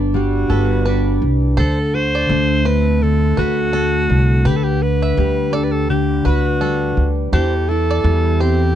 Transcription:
Already playing: upright bass G1, steel-string acoustic guitar G3 D4 B4
0.14 steel-string acoustic guitar G3, alto saxophone F#4
0.50 upright bass G1, five-string banjo A4, steel-string acoustic guitar B4
0.85 steel-string acoustic guitar D4, five-string banjo B4
1.21 upright bass C2
1.57 upright bass D2, steel-string acoustic guitar D3 A4, alto saxophone A4, five-string banjo C5
1.94 steel-string acoustic guitar F#4, alto saxophone C5
2.15 five-string banjo D5
2.29 upright bass D2, steel-string acoustic guitar A3
2.65 steel-string acoustic guitar C4, alto saxophone B4, five-string banjo C5
3.02 steel-string acoustic guitar D3, alto saxophone A4
3.37 upright bass D2, alto saxophone F#4, steel-string acoustic guitar A4, five-string banjo B4
3.73 steel-string acoustic guitar A3, five-string banjo A4
4.09 upright bass C2
4.45 upright bass D2, steel-string acoustic guitar D3 B4, alto saxophone G4, five-string banjo B4
4.56 alto saxophone A4
4.64 alto saxophone G4
4.82 alto saxophone B4
5.02 five-string banjo E5
5.17 upright bass D2, steel-string acoustic guitar G3
5.53 steel-string acoustic guitar D4, alto saxophone A4, five-string banjo D5
5.64 alto saxophone B4
5.71 alto saxophone A4
5.89 steel-string acoustic guitar D3, alto saxophone G4
6.25 upright bass D2, alto saxophone F#4, five-string banjo B4, steel-string acoustic guitar B4
6.61 steel-string acoustic guitar G3, five-string banjo A4
6.97 upright bass D2
7.33 upright bass E2, steel-string acoustic guitar E3 A4, alto saxophone G4, five-string banjo C5
7.69 steel-string acoustic guitar E4, alto saxophone A4
7.91 five-string banjo D5
8.04 upright bass E2, steel-string acoustic guitar G3
8.40 steel-string acoustic guitar C4, alto saxophone G4, five-string banjo C5

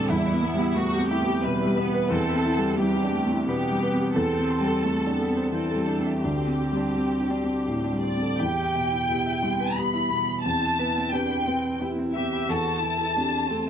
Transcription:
Already playing: felt piano A2 C3 G3 C4 D4, harp D4 A4 C5 A5 C6
0.09 felt piano E2, cello G3, violin section E4, harp E4
0.26 harp E5
0.33 felt piano B3
0.42 cello B3
0.55 felt piano G3
0.59 harp E4
0.75 cello A3, felt piano B3, violin section F#4
0.93 harp G4
0.99 felt piano C4
1.11 harp E4, violin section G4
1.22 felt piano B3
1.28 harp G4
1.43 felt piano B2, cello G3, violin section B4, harp E5
1.61 harp E4
1.67 felt piano G3
1.77 cello B3, harp E5
1.87 felt piano B3
1.94 harp B4
2.10 felt piano E2, cello C4, violin section A4
2.29 harp B4
2.35 felt piano C4
2.45 harp E4
2.58 felt piano G3
2.79 cello G3, felt piano C4, harp E4, violin section G4
2.96 harp E4
3.04 felt piano D4
3.13 cello A3
3.27 felt piano C4
3.32 harp E4
3.47 felt piano B2, cello B3, violin section G4, harp B4
3.71 felt piano G3
3.83 harp B4
3.93 felt piano C4
4.00 harp G4
4.15 felt piano E2, cello C4, harp A4, violin section A4
4.33 harp G5
4.38 felt piano C4
4.50 harp C6
4.60 felt piano G3
4.67 harp A4
4.84 cello A3, felt piano C4
5.07 felt piano D4
5.19 cello B3, harp A4
5.30 felt piano C4
5.37 harp C5
5.52 felt piano E3, cello C4, violin section A4, harp G5
5.71 harp A4
5.75 felt piano G3
5.87 cello D4, harp G5
5.99 felt piano C4
6.06 harp E5
6.22 felt piano D2, cello C4, harp D4, violin section G4
6.42 harp C5
6.47 felt piano C4
6.59 harp G4
6.72 felt piano G3
6.77 harp D4
6.94 felt piano C4, harp G4
7.21 felt piano D4
7.30 harp D4
7.43 felt piano C4
7.66 felt piano A2, harp C5
7.84 harp D4
7.92 felt piano G3
8.02 harp C5, violin section D5
8.17 felt piano C4
8.22 harp A4
8.39 felt piano E2, harp E4, cello G4, violin section G5
8.75 felt piano B2, harp E5
8.91 harp E4
9.09 felt piano B3 G4, cello E4, harp E5
9.26 harp E5
9.43 felt piano G3, cello C4, harp E4
9.60 harp B4
9.77 felt piano B3 G4, cello B3, violin section B5
9.94 harp E4
10.10 felt piano B2
10.45 felt piano E2, harp C4, cello C4, violin section A5
10.61 harp E4
10.79 felt piano B3, cello E4, harp B4
10.97 harp C4
11.12 felt piano C4 G4, cello D4, harp B4, violin section G5
11.31 harp B4
11.47 cello C4, harp C4, felt piano B4
11.81 felt piano C4 G4, cello E4, harp E4
11.98 harp C4
12.15 felt piano B3, harp E4, cello G4, violin section E5
12.33 harp E4
12.49 felt piano E2, cello F#4, harp A4, violin section A5
12.67 harp C5
12.83 felt piano E3, cello E4, harp A5
13.01 harp A4
13.16 felt piano C4 G4, cello D4
13.49 felt piano A3, cello C4, harp A4

